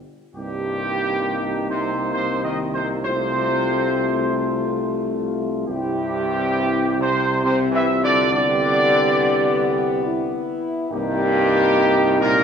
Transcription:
0.35 C2 G2 A#3 D#4 G4
1.69 C3 C5
2.14 C3 C5
2.44 D#3 D#5
2.74 C3 C5
3.04 C3 A3 F4 C5
5.67 C2 G2 C4 E4 G4
6.99 C3 C5
7.43 C3 C4 E4 C5
7.71 E3 E5
7.89 F4
8.02 D3 D5
8.31 D3 B3 G4 D5
10.05 E4
10.91 C2 G2 A#3 D#4 G4
12.21 A#2 A#4

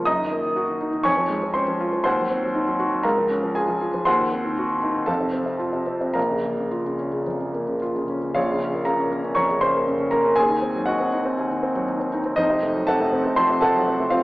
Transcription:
0.05 F#2 D#5 A#5 D#6
0.19 D#3
0.32 A#3
0.44 D#3
0.56 F#4
0.68 D#3
0.81 D#4
0.93 D#3
1.03 F2 C#5 G#5 C#6
1.17 F3
1.30 G#3
1.43 F3
1.54 C#4 C5 C6
1.68 F3
1.80 F4
1.93 F3
2.04 D#2 C5 F#5 C6
2.18 F#3
2.30 C4
2.43 F#3
2.55 D#4
2.67 F#3
2.79 F#4
2.92 F#3
3.03 C#2 A#4 F5 A#5
3.18 F3
3.30 C#4
3.43 F3
3.55 F4 G#4 G#5
3.69 F3
3.81 F4
3.94 F3
4.05 D#2 C5 F#5 C6
4.19 D#3
4.32 C4
4.45 D#3
4.58 F#4
4.71 D#3
4.83 D#4
4.96 D#3
5.06 F2 A4 F5 A5
5.20 C3
5.33 C4
5.46 C3
5.59 F4
5.73 C3
5.87 C4
6.01 C3
6.14 A#1 A#4 F5 A#5
6.29 C#3
6.44 A#3
6.58 C#3
6.71 F4
6.85 C#3
6.99 C#4
7.13 C#3
7.27 F2
7.40 C#3
7.54 A#3
7.68 C#3
7.82 F4
7.96 C#3
8.09 C#4
8.23 C#3
8.35 A#1 F4 C#5 F5
8.49 C#3
8.61 C#4
8.74 A#3
8.85 C#3 A#4 F5 A#5
8.99 C#4
9.12 A#3
9.24 C#4
9.35 F2 C#5 A#5 C#6
9.50 C#3
9.61 C#4 C5 C6
9.75 A#3
9.87 C#3
10.00 C#4
10.11 A#3 A#4 A#5
10.25 C#4
10.36 D#2 G#4 G#5
10.49 D#3
10.62 C4
10.75 F#3
10.86 D#3 F#4 D#5 F#5
11.00 C4
11.13 D#4
11.25 C4
11.38 D#2
11.50 D#3
11.63 C4
11.75 F#3
11.88 D#3
12.00 C4
12.13 D#4
12.25 C4
12.36 F2 D#4 C5 D#5
12.50 C3
12.63 A3
12.75 F#3
12.87 C3 A4 F#5 A5
13.00 A3
13.13 C4
13.25 A3
13.36 F3 C5 A5 C6
13.50 C3
13.61 A3 A4 F#5 A5
13.75 F#3
13.88 C3
14.00 A3
14.10 C4 F4 F5

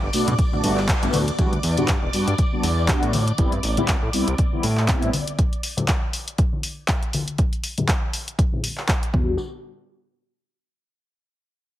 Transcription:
Already playing: D5 D6
0.03 G1
0.13 B2 A3 B3 D4 F#4, open hi-hat, tambourine
0.27 B2, closed hi-hat, tambourine, low conga
0.39 kick, closed hi-hat, tambourine
0.52 A3 B3 D4 F#4, tambourine, high conga, low conga
0.63 G1 A3 B3 D4 F#4, open hi-hat, tambourine
0.78 clap, tambourine
0.88 kick, clap, closed hi-hat, tambourine
1.02 G1 A3 B3 D4 F#4, closed hi-hat, tambourine
1.13 D2, open hi-hat, tambourine, high conga, low conga
1.27 closed hi-hat, tambourine
1.38 E2 G3 B3 D4 F#4 D5 D6, kick, closed hi-hat, tambourine
1.52 D2, closed hi-hat
1.63 E2, open hi-hat, tambourine
1.77 G2 G3 B3 D4 F#4, closed hi-hat, tambourine, high conga, low conga
1.88 G2, kick, clap, closed hi-hat
2.03 E1
2.13 G2 G3 B3 D4 F#4, open hi-hat, tambourine
2.27 G2, closed hi-hat, tambourine
2.38 kick, closed hi-hat, tambourine
2.52 G3 B3 D4 F#4, high conga
2.63 E2, open hi-hat, tambourine
2.79 tambourine
2.88 G3 B3 D4 F#4, kick, clap, closed hi-hat
3.03 A2, closed hi-hat
3.13 open hi-hat, tambourine, high conga
3.28 closed hi-hat, tambourine
3.38 A1 G3 B3 C4 E4, kick, closed hi-hat, tambourine
3.52 G2, closed hi-hat
3.63 A1, open hi-hat, tambourine
3.77 C2 G3 B3 C4 E4, closed hi-hat, tambourine, high conga, low conga
3.88 C2, kick, clap, closed hi-hat
4.03 A2
4.13 C2 G3 B3 C4 E4, open hi-hat, tambourine
4.28 C2, closed hi-hat
4.38 kick, closed hi-hat
4.52 G3 B3 C4 E4, high conga
4.63 A2, open hi-hat, tambourine
4.77 clap, tambourine
4.88 G3 B3 C4 E4, kick, clap, closed hi-hat
5.02 A2, closed hi-hat
5.13 open hi-hat, tambourine, high conga
5.27 closed hi-hat, tambourine
5.39 kick, closed hi-hat
5.53 closed hi-hat
5.63 open hi-hat, tambourine
5.77 closed hi-hat, tambourine, high conga, low conga
5.88 kick, clap, closed hi-hat
6.13 open hi-hat, tambourine
6.28 closed hi-hat, tambourine
6.38 kick, closed hi-hat
6.53 high conga
6.63 open hi-hat, tambourine
6.77 tambourine
6.88 kick, clap, closed hi-hat, tambourine
7.03 closed hi-hat
7.13 open hi-hat, tambourine, high conga
7.27 closed hi-hat, tambourine
7.38 kick, closed hi-hat
7.53 closed hi-hat
7.64 open hi-hat, tambourine
7.78 closed hi-hat, tambourine, high conga, low conga
7.88 kick, clap, closed hi-hat
8.13 open hi-hat, tambourine
8.28 closed hi-hat, tambourine
8.39 kick, closed hi-hat
8.52 tambourine, high conga, low conga
8.64 open hi-hat, tambourine
8.78 clap, tambourine
8.89 kick, clap, closed hi-hat
9.03 closed hi-hat
9.13 E2 G3 B3 D4 F#4, kick, tambourine, high conga, low conga
9.29 tambourine

